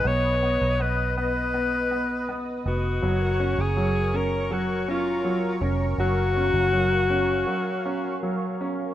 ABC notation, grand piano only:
X:1
M:4/4
L:1/8
Q:1/4=81
K:F#
V:1 name="Grand piano"
B, B, B, B, B, B, B, B, | F, C F, C F, C F, C | F, C F, C F, C F, C |]